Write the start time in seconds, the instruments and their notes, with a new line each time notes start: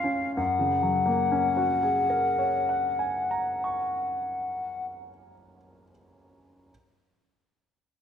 Already playing: grand piano F#2 C#4 D#4 F4, flute F5
0.04 grand piano C#4
0.36 grand piano F#2, flute F#5
0.59 grand piano C#3
0.83 grand piano F#3
1.06 grand piano A#3
1.32 grand piano C#4
1.57 grand piano F#4
1.83 grand piano G#4
2.10 grand piano A#4
2.39 grand piano C#5
2.69 grand piano F#5
2.99 grand piano G#5
3.31 grand piano A#5
3.64 grand piano C#6